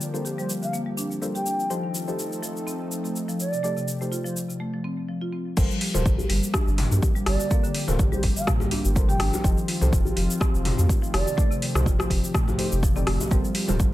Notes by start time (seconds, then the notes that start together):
Already playing: F3 G3 A#3 C4 D4 F4 G4 A4 A#4 D5 A5
0.01 shaker
0.14 G3 A#3 D4 F4 A4 A#4 C5, shaker
0.25 G4, shaker
0.38 G3 C5, shaker
0.50 shaker
0.62 D3 F5, shaker
0.73 A#3, shaker
0.86 G3
0.97 D4, shaker
1.11 shaker
1.22 G3 D4 F4 A4 A#4 C5, shaker
1.35 G4 G5, shaker
1.46 D4, shaker
1.59 shaker
1.70 F3 A3 C4 D#4 G4 A4 C5, shaker
1.83 D#3
1.95 F4, shaker
2.08 F3 D#4 G4 A4 C5, shaker
2.19 shaker
2.33 shaker
2.43 F3, shaker
2.57 shaker
2.67 C4, shaker
2.92 shaker
3.04 A3, shaker
3.16 shaker
3.28 F3, shaker
3.40 D5, shaker
3.52 C3, shaker
3.63 F3 A3 D#4 G4 A4 D5, shaker
3.76 C3, shaker
3.88 shaker
4.01 F3 A3 D#4 G4 A4 C5, shaker
4.12 F4, shaker
4.25 F3 C5, shaker
4.37 shaker
4.49 C3, shaker
4.60 A3
4.73 F3
4.84 C4
5.08 F3
5.21 F4
5.33 C4
5.57 G1 F3 G3 A#3 C4 F4 G4 A4 A#4 C5, kick, crash, shaker
5.70 F3, shaker
5.81 G4, open hi-hat
5.94 D1 F4 A4 A#4 C5, mid tom, djembe slap, shaker
6.06 G1, kick, shaker
6.18 djembe bass, shaker
6.29 G1 G3, open hi-hat
6.43 shaker
6.54 D4, kick, cross-stick, djembe tone, shaker
6.67 G1, shaker
6.78 open hi-hat, mid tom, djembe slap
6.91 G2 A#3, djembe tone, shaker
7.03 kick, shaker
7.15 G3, shaker
7.26 G1 D5, cross-stick, open hi-hat, djembe tone
7.40 D3, shaker
7.51 A#3 F4 A4 A#4 D5, kick, shaker
7.64 D3, shaker
7.74 open hi-hat
7.88 D1 A#3 F4 A4 A#4 C5, mid tom, djembe slap, shaker
7.99 G1 G4, kick, shaker
8.12 G3 C5, djembe bass, shaker
8.23 G1, kick, open hi-hat
8.36 D3 F5, shaker
8.47 A#3, kick, cross-stick, mid tom, shaker
8.60 G3, djembe slap, djembe bass, shaker
8.71 D4, open hi-hat, djembe tone
8.85 G1, shaker
8.96 G3 F4 A4 A#4 C5, kick, shaker
9.09 G4 G5, mid tom, shaker
9.20 G1 D4, cross-stick, open hi-hat, djembe tone
9.33 djembe slap, djembe tone, shaker
9.44 F1 D#3 F3 D#4 F4 G4 A4 C5, kick, shaker
9.57 D#3, shaker
9.68 F4, open hi-hat
9.81 C2 D#4 G4 A4 C5, mid tom, djembe slap, shaker
9.93 F1, kick, shaker
10.05 djembe bass, shaker
10.17 F1 F3, open hi-hat
10.31 shaker
10.40 C4, kick, cross-stick, djembe tone, shaker
10.54 F1, shaker
10.65 open hi-hat, mid tom, djembe slap
10.78 F2 A3, djembe tone, shaker
10.89 kick, shaker
11.02 F3, shaker
11.13 F1 D5, cross-stick, open hi-hat, djembe tone
11.26 C3, shaker
11.37 A3 D#4 G4 A4 D5, kick, shaker
11.51 C3, shaker
11.62 open hi-hat
11.75 C2 D#4 G4 A4 C5, cross-stick, mid tom, djembe slap, shaker
11.86 F1 F4, kick, shaker
11.99 F3 C5, cross-stick, djembe bass, shaker
12.10 F1, kick, open hi-hat
12.24 C3, shaker
12.34 A3, kick, cross-stick, mid tom, shaker
12.47 F3, djembe slap, djembe bass, shaker
12.58 A3 D#4 G4 A4 C5, open hi-hat, djembe tone
12.72 F1 C3, shaker
12.83 F3, kick, shaker
12.96 C4 D#4 G4 A4 D5, mid tom, shaker
13.07 F1 A3, cross-stick, open hi-hat, djembe tone
13.21 djembe slap, djembe tone, shaker
13.31 G1 C3 G3 A#3 F4 A4 A#4 C5, kick, muted conga, high conga, shaker
13.45 F3, shaker
13.55 G4, open hi-hat
13.68 D1 F4 A4 A#4 C5, mid tom, djembe slap, muted conga, low conga, shaker
13.80 G1, kick, shaker